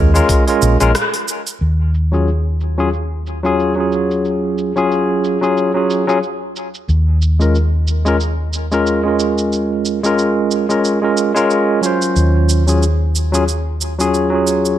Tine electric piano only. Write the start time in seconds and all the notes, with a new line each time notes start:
Already playing: G#3 C#4 F4 A#4
0.14 G#3 C#4 F4 A#4
0.47 G#3 C#4 F4 A#4
0.80 G#3 C#4 F4 A#4
2.12 F#3 C#4 F4 G#4
2.78 F#3 C#4 F4 G#4
3.43 F#3 C#4 F4 G#4
3.75 F#3 C#4 F4
3.80 G#4
4.75 F#3 C#4 F4 G#4
5.41 F#3 C#4 F4 G#4
5.74 F#3 C#4 F4 G#4
6.07 F#3 C#4 F4 G#4
7.39 G#3 C#4 F4 A#4
8.05 G#3 C#4 F4 A#4
8.71 G#3 C#4 F4 A#4
9.03 G#3 C#4 F4
9.08 A#4
10.03 G#3 C#4 F4 A#4
10.69 G#3 C#4 F4 A#4
11.02 G#3 C#4 F4 A#4
11.34 G#3 C#4 F4 A#4
11.81 F#3 C#4 F4
11.86 C5
12.66 F#3 C#4 F4 G#4
13.32 F#3 C#4 F4 G#4
13.99 F#3 C#4 F4 G#4
14.30 F#3 C#4 F4
14.35 G#4